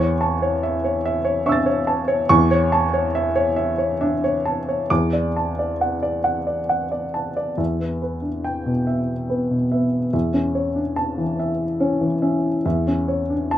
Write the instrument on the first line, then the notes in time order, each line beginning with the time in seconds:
upright piano
Already playing: E2 C#6
0.00 C#5
0.21 A5
0.42 C#5
0.63 E5
0.84 C#5
1.06 E5
1.25 C#5
1.46 D4 E5 C#6 E6
1.52 A6
1.66 C#5
1.87 A5
2.08 C#5
2.29 E2 C#6
2.51 C#5
2.72 A5
2.94 C#5
3.15 E5
3.36 C#5
3.56 E5
3.78 C#5
4.01 D4 E5
4.24 C#5
4.45 A5
4.69 C#5
4.90 E2 D6
5.13 D5
5.36 A5
5.59 D5
5.81 F#5
6.03 D5
6.24 F#5
6.47 D5
6.69 F#5
6.92 D5
7.14 A5
7.37 D5
7.58 E2 E5
7.80 B3
8.02 B4
8.22 D4
8.44 G5
8.66 B2
8.87 E5
9.30 B3 B4
9.50 B2
9.72 B3 E5
10.13 E2 E5
10.34 C#4
10.55 C#5
10.76 D4
10.96 A5
11.18 E3
11.40 E5
11.80 C#4 C#5
12.01 E3
12.22 C#4 E5
12.65 E2 E5
12.88 C#4
13.08 C#5
13.30 D4
13.51 A5